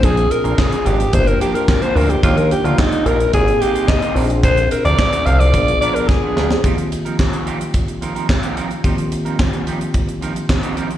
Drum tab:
HH |xxxx-xxxxxxx-xox|xxxx-xxxxxxx-xox|xxxx-xxxxxxx----|xxxx-xxxxxxx-xxx|
CP |----x-------x---|----x-------x---|----x-----------|----x-------x---|
SD |----o-------o---|----o-------o---|----o-------o-oo|----o-------o---|
BD |o---o---o---o---|o---o---o---o---|o---o---o---o---|o---o---o---o---|

HH |xxxx-xxxxxxx-xxx|
CP |----x-------x---|
SD |----o-------o---|
BD |o---o---o---o---|